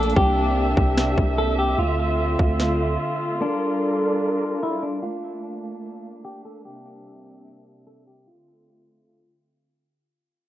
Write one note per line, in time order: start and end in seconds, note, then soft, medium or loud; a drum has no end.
0.00 0.14 A#1 loud
0.00 0.15 A3 medium
0.00 1.75 A#3 medium
0.00 1.75 D4 medium
0.00 0.16 A4 medium
0.00 closed hi-hat medium
0.10 closed hi-hat medium
0.16 0.75 C2 loud
0.16 1.77 C3 medium
0.16 1.77 G3 medium
0.16 1.34 G4 medium
0.16 3.38 E5 medium
0.16 kick loud
0.77 1.16 C2 loud
0.77 kick loud
0.97 snare loud
1.18 1.76 C2 loud
1.18 kick medium
1.38 1.57 A4 medium
1.59 1.78 G4 medium
1.79 2.37 D2 loud
1.79 3.39 D3 medium
1.79 3.39 A3 medium
1.79 3.39 C4 medium
1.79 5.00 F4 medium
1.79 2.96 F4 medium
2.39 2.98 D2 loud
2.39 kick loud
2.60 snare loud
3.41 5.01 G3 medium
3.41 5.01 D4 medium
3.41 4.59 D4 medium
3.41 5.01 A4 medium
3.41 5.01 A#4 medium
4.63 4.82 E4 medium
4.83 5.02 D4 medium
5.03 6.63 A3 medium
5.03 8.24 A#3 medium
5.03 8.24 D4 medium
5.03 6.20 F4 medium
6.25 6.44 G4 medium
6.45 6.64 A4 medium
6.65 8.26 C3 medium
6.65 8.26 G3 medium
6.65 7.83 G4 medium
6.65 9.86 E5 medium
7.87 8.06 A4 medium
8.07 8.26 G4 medium
8.27 9.88 D3 medium
8.27 9.88 A3 medium
8.27 9.88 C4 medium
8.27 9.88 F4 medium
8.27 9.45 F4 medium